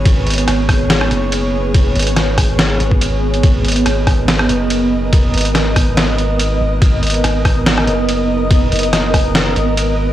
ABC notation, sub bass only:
X:1
M:4/4
L:1/8
Q:"Swing 16ths" 1/4=142
K:G#m
V:1 name="Sub bass" clef=bass
G,,,2 G,,,3 F,,,3- | F,,, G,,,4 G,,,3 | G,,,2 G,,,3 F,,,3- | F,,, G,,,6 G,,, |
G,,,2 G,,,3 F,,,3- | F,,, F,,,4 G,,,3 |]